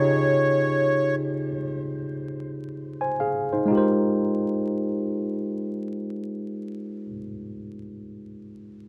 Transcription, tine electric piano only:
Already playing: C#3 D#4 F4 G4 G#4 C#5
3.01 C5 G#5
3.20 G#4 F5
3.53 D#4 C5
3.66 G#3 D#4
3.70 F4 G4
3.75 A#4 C5

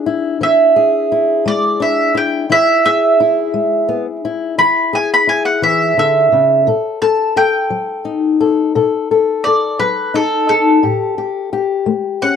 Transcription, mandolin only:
0.43 E5
1.48 D5
1.82 E5
2.17 G5
2.52 E5
2.85 E5
4.59 B5
4.95 G#5
5.14 B5
5.29 G#5
5.45 F#5
5.63 E5
5.99 E5
7.02 A5
7.37 G5
9.44 D5
9.79 B4
10.15 A4
10.49 A4
12.22 F#5

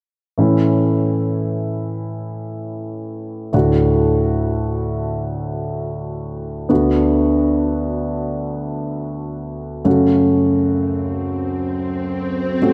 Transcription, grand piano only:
0.38 A2 E3 A3 C#4 E4
3.53 D2 A2 A3 D4 F#4
6.69 D2 D3 B3 D4 F#4
9.85 F#2 C#3 A3 C#4 F#4
12.62 A3 C#4 F#4

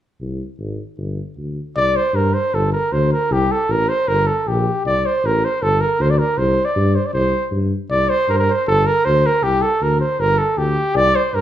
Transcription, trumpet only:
1.76 D5
1.96 C5
2.15 A#4
2.33 C5
2.54 A4
2.72 A#4
2.92 C5
3.12 A#4
3.32 G4
3.51 A4
3.71 A#4
3.88 C5
4.08 A#4
4.26 A4
4.48 G4
4.86 D5
5.06 C5
5.26 A#4
5.44 C5
5.62 A4
5.80 A#4
6.01 C5
6.10 D5
6.18 A#4
6.37 C5
6.65 D5
6.95 C5
7.06 D5
7.13 C5
7.91 D5
8.09 C5
8.30 A#4 C5
8.38 A#4
8.50 C5
8.68 A4
8.86 A#4
9.05 C5
9.26 A#4
9.43 G4
9.61 A4
9.82 A#4
10.00 C5
10.20 A#4
10.38 A4
10.58 G4
10.96 D5
11.16 C5
11.34 A#4

